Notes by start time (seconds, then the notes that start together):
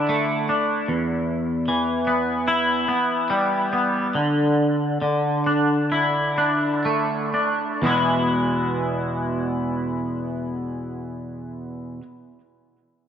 Already playing: D3 D4 E4
0.09 A3
0.49 D4
0.88 E2
1.68 E3
2.07 B3
2.48 E4
2.88 B3
3.30 G3
3.73 B3
4.15 D3
5.02 D3
5.46 D4
5.92 E4
6.38 D4
6.85 A3
7.34 D4
7.82 E2 B2 E3 G#3 B3
7.86 E4